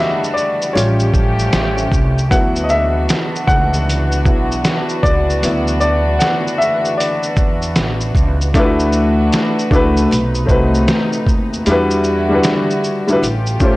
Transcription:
0.00 0.73 E3 medium
0.00 0.32 G3 medium
0.00 0.73 G3 medium
0.00 0.33 D4 soft
0.00 0.73 D4 medium
0.00 0.33 F#4 medium
0.00 0.73 F#4 loud
0.00 0.34 D5 medium
0.00 0.77 D#5 medium
0.00 0.77 E5 loud
0.24 shaker soft
0.34 0.75 D5 medium
0.34 shaker soft
0.62 shaker medium
0.73 1.11 A1 loud
0.73 2.29 F3 medium
0.73 1.31 G3 medium
0.73 2.29 A3 medium
0.73 2.29 C#4 medium
0.73 1.31 C#4 medium
0.73 1.31 F4 medium
0.73 2.29 G4 medium
0.73 1.87 C#5 medium
0.77 closed hi-hat medium
0.77 shaker medium
1.00 shaker soft
1.14 1.50 A1 medium
1.14 kick medium
1.14 shaker soft
1.39 shaker soft
1.53 1.89 A1 medium
1.53 snare loud
1.53 closed hi-hat medium
1.53 shaker medium
1.78 shaker soft
1.92 2.28 C2 medium
1.92 kick medium
1.92 shaker medium
2.18 shaker soft
2.30 3.05 D2 loud
2.30 8.50 E3 medium
2.30 3.44 F#3 medium
2.30 8.50 B3 medium
2.30 3.44 B3 medium
2.30 8.50 D4 medium
2.30 3.44 E4 medium
2.30 8.50 F#4 medium
2.30 2.62 F#5 loud
2.30 kick loud
2.30 closed hi-hat medium
2.30 shaker medium
2.56 shaker medium
2.64 2.69 D#5 medium
2.69 3.50 E5 loud
2.69 shaker soft
3.09 snare loud
3.09 closed hi-hat medium
3.09 shaker medium
3.36 shaker soft
3.47 4.26 C#2 medium
3.47 4.99 F#5 loud
3.47 kick medium
3.47 shaker soft
3.74 shaker soft
3.89 closed hi-hat medium
3.89 shaker medium
4.12 shaker soft
4.25 4.62 B1 loud
4.25 4.61 F#3 soft
4.25 4.61 B3 soft
4.25 4.61 E4 soft
4.25 kick medium
4.25 shaker soft
4.52 shaker soft
4.65 snare loud
4.65 closed hi-hat medium
4.65 shaker medium
4.89 shaker soft
5.03 5.40 C#2 medium
5.03 5.77 D5 loud
5.03 kick medium
5.03 shaker medium
5.30 shaker soft
5.43 6.17 D2 loud
5.43 5.99 F#3 medium
5.43 5.99 B3 medium
5.43 5.99 E4 medium
5.43 closed hi-hat medium
5.43 shaker medium
5.68 shaker soft
5.80 6.17 D5 medium
5.80 shaker soft
6.19 6.60 F#5 medium
6.19 snare loud
6.19 closed hi-hat medium
6.19 shaker medium
6.47 shaker soft
6.58 6.99 E5 loud
6.58 shaker soft
6.85 shaker soft
6.97 8.11 D5 medium
6.97 closed hi-hat medium
6.97 shaker medium
7.23 shaker soft
7.37 7.73 E2 medium
7.37 kick medium
7.37 shaker soft
7.62 shaker soft
7.76 8.12 A1 medium
7.76 snare loud
7.76 closed hi-hat medium
7.76 shaker medium
8.01 shaker soft
8.15 8.51 C#2 loud
8.15 kick medium
8.15 shaker medium
8.41 shaker soft
8.53 9.28 D2 loud
8.53 10.08 E3 medium
8.53 9.46 A3 loud
8.53 10.08 D4 medium
8.53 9.47 D4 loud
8.53 10.08 F#4 medium
8.53 11.62 B4 medium
8.53 kick loud
8.53 closed hi-hat medium
8.53 shaker medium
8.57 9.48 E4 loud
8.57 8.64 F4 medium
8.57 9.49 B4 loud
8.64 9.51 F#4 medium
8.79 shaker soft
8.92 shaker soft
9.33 snare loud
9.33 closed hi-hat medium
9.33 shaker medium
9.59 shaker soft
9.71 10.07 C#2 medium
9.71 10.10 A3 medium
9.71 10.10 D4 medium
9.71 10.11 E4 medium
9.71 10.12 F#4 medium
9.71 kick medium
9.71 shaker soft
9.76 10.12 B4 loud
9.97 shaker medium
10.08 10.46 B1 medium
10.08 11.63 C3 medium
10.08 11.63 A3 medium
10.08 11.64 D#4 medium
10.12 closed hi-hat medium
10.12 shaker medium
10.35 shaker soft
10.46 10.85 C2 medium
10.46 11.40 A3 medium
10.46 11.40 C4 medium
10.46 11.41 D#4 medium
10.46 11.41 F#4 medium
10.46 kick medium
10.46 shaker soft
10.51 11.42 B4 medium
10.74 shaker soft
10.88 snare loud
10.88 closed hi-hat medium
10.88 shaker medium
11.13 shaker soft
11.27 11.63 D#2 medium
11.27 kick medium
11.27 shaker soft
11.53 shaker soft
11.65 12.40 E2 loud
11.65 13.20 D3 medium
11.65 13.20 G3 medium
11.65 12.12 G3 loud
11.65 12.13 D4 medium
11.65 13.20 E4 medium
11.65 13.20 F#4 medium
11.65 closed hi-hat medium
11.65 shaker medium
11.69 12.14 E4 medium
11.69 12.14 F#4 medium
11.69 12.15 B4 loud
11.90 shaker soft
12.04 shaker soft
12.29 12.83 G3 medium
12.29 12.84 D4 medium
12.29 12.85 E4 medium
12.33 12.86 F#4 medium
12.33 12.86 B4 medium
12.44 snare loud
12.44 closed hi-hat medium
12.44 shaker medium
12.70 shaker soft
12.84 shaker soft
13.07 13.21 G3 medium
13.07 13.22 D4 medium
13.07 13.23 E4 medium
13.07 13.23 F#4 medium
13.07 shaker soft
13.13 13.24 B4 medium
13.22 13.58 A1 medium
13.22 13.76 A3 medium
13.22 13.76 C#4 medium
13.22 13.76 F4 medium
13.22 13.76 G4 medium
13.22 closed hi-hat medium
13.22 shaker medium
13.46 shaker soft
13.60 13.76 A1 medium
13.60 13.76 A3 medium
13.60 13.76 C#4 medium
13.60 13.76 F4 medium
13.60 13.76 G4 medium
13.60 kick medium
13.60 shaker soft
13.65 13.76 C5 medium

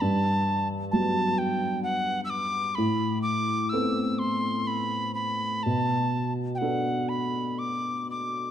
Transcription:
0.01 2.73 G2 medium
0.01 0.68 A5 medium
0.91 2.73 F#3 soft
0.91 2.72 G3 soft
0.91 2.73 B3 soft
0.91 1.40 A5 medium
1.38 1.83 G5 medium
1.83 2.21 F#5 medium
2.25 2.31 E6 medium
2.30 2.77 D6 medium
2.75 5.61 A2 medium
2.75 3.22 B5 medium
3.22 3.71 D6 medium
3.69 5.61 B3 soft
3.69 5.61 C4 soft
3.69 5.61 A4 soft
3.69 4.20 E6 medium
4.19 4.69 C6 medium
4.67 5.14 B5 medium
5.15 5.65 B5 medium
5.63 8.51 B2 soft
5.63 6.33 A5 medium
6.55 7.10 F#5 medium
6.55 6.59 G5 soft
6.61 8.51 B3 soft
6.61 8.51 D4 soft
6.61 8.51 A4 soft
7.09 7.60 B5 medium
7.59 8.10 D6 medium
8.10 8.51 D6 medium

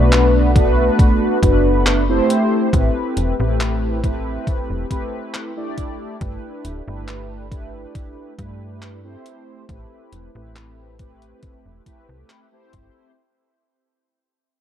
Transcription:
0.00 0.90 B1 loud
0.00 0.50 A3 medium
0.00 0.51 B3 medium
0.00 0.51 D4 medium
0.00 0.51 F#4 medium
0.00 0.51 B4 medium
0.12 clap loud
0.12 closed hi-hat medium
0.55 1.37 A3 medium
0.55 1.38 B3 medium
0.55 1.38 D4 medium
0.55 1.38 F#4 medium
0.55 1.38 B4 medium
0.55 kick loud
0.55 closed hi-hat medium
0.99 kick loud
0.99 closed hi-hat medium
1.42 2.21 F#1 medium
1.42 2.03 A3 medium
1.42 2.03 B3 medium
1.42 2.03 D4 medium
1.42 2.04 F#4 medium
1.42 2.04 B4 medium
1.42 kick medium
1.42 closed hi-hat medium
1.86 clap loud
1.86 closed hi-hat medium
2.08 2.68 A3 medium
2.08 2.68 C4 medium
2.08 2.68 E4 medium
2.08 2.68 G4 medium
2.08 2.69 C5 loud
2.30 closed hi-hat medium
2.72 2.90 A1 loud
2.72 3.34 A3 medium
2.72 3.34 C4 medium
2.72 3.34 E4 medium
2.72 3.34 G4 medium
2.72 3.34 B4 medium
2.72 kick loud
2.72 closed hi-hat medium
3.17 3.33 E1 medium
3.17 closed hi-hat medium
3.39 4.38 A1 loud
3.39 3.98 A3 medium
3.39 3.98 C4 medium
3.39 3.99 E4 medium
3.39 3.99 G4 medium
3.39 3.99 B4 medium
3.60 clap loud
3.60 closed hi-hat medium
4.03 4.85 A3 medium
4.03 4.86 C4 medium
4.03 4.86 E4 medium
4.03 4.86 G4 medium
4.03 4.86 B4 medium
4.03 kick loud
4.03 closed hi-hat medium
4.47 kick loud
4.47 closed hi-hat medium
4.70 4.85 E1 medium
4.90 5.51 A3 medium
4.90 5.51 C4 medium
4.90 5.52 E4 medium
4.90 5.52 G4 medium
4.90 5.52 B4 medium
4.90 kick medium
4.90 closed hi-hat medium
5.34 clap loud
5.34 closed hi-hat medium
5.56 6.16 A3 medium
5.56 6.16 D4 medium
5.56 6.16 E4 medium
5.56 6.16 G4 medium
5.56 6.16 D5 medium
5.78 kick medium
5.78 closed hi-hat medium
6.20 6.38 G1 medium
6.20 6.81 A3 medium
6.20 6.82 D4 medium
6.20 6.82 E4 medium
6.20 6.82 G4 medium
6.20 6.82 B4 medium
6.20 kick loud
6.20 closed hi-hat medium
6.65 6.81 D1 medium
6.65 closed hi-hat medium
6.86 7.86 G1 loud
6.86 7.46 A3 medium
6.86 7.46 D4 medium
6.86 7.46 E4 medium
6.86 7.46 G4 medium
6.86 7.47 B4 medium
7.08 clap loud
7.08 closed hi-hat medium
7.50 8.33 A3 medium
7.50 8.33 D4 medium
7.50 8.33 E4 medium
7.50 8.33 G4 medium
7.50 8.34 B4 medium
7.50 kick medium
7.50 closed hi-hat medium
7.95 kick loud
7.95 closed hi-hat medium
8.37 9.16 G2 medium
8.37 8.99 A3 medium
8.37 8.99 D4 medium
8.37 8.99 E4 medium
8.37 8.99 G4 medium
8.37 8.99 B4 loud
8.37 kick medium
8.37 closed hi-hat medium
8.82 clap loud
8.82 closed hi-hat medium
9.04 9.63 A3 medium
9.04 9.63 C4 medium
9.04 9.64 E4 medium
9.04 9.64 G4 medium
9.04 9.64 C5 medium
9.26 closed hi-hat medium
9.68 9.86 A1 medium
9.68 10.29 A3 medium
9.68 10.29 C4 medium
9.68 10.30 E4 medium
9.68 10.30 G4 medium
9.68 10.30 B4 medium
9.68 kick loud
9.68 closed hi-hat medium
10.13 10.29 E1 medium
10.13 closed hi-hat medium
10.34 11.34 A1 loud
10.34 10.94 A3 medium
10.34 10.94 C4 medium
10.34 10.94 E4 medium
10.34 10.94 G4 medium
10.34 10.95 B4 medium
10.56 clap loud
10.56 closed hi-hat medium
10.99 11.81 A3 medium
10.99 11.81 C4 medium
10.99 11.81 E4 medium
10.99 11.82 G4 medium
10.99 11.82 B4 medium
10.99 kick loud
10.99 closed hi-hat medium
11.22 closed hi-hat soft
11.43 kick loud
11.43 closed hi-hat medium
11.66 11.81 E1 medium
11.85 12.47 A3 medium
11.85 12.47 C4 medium
11.85 12.47 E4 medium
11.85 12.47 G4 medium
11.85 12.47 B4 medium
11.85 kick medium
11.85 closed hi-hat medium
12.09 12.24 C2 medium
12.30 clap loud
12.30 closed hi-hat medium
12.52 13.11 A3 medium
12.52 13.11 C4 medium
12.52 13.12 E4 medium
12.52 13.12 G4 medium
12.52 13.12 C5 loud
12.73 12.90 G1 medium
12.73 kick medium
12.73 closed hi-hat medium

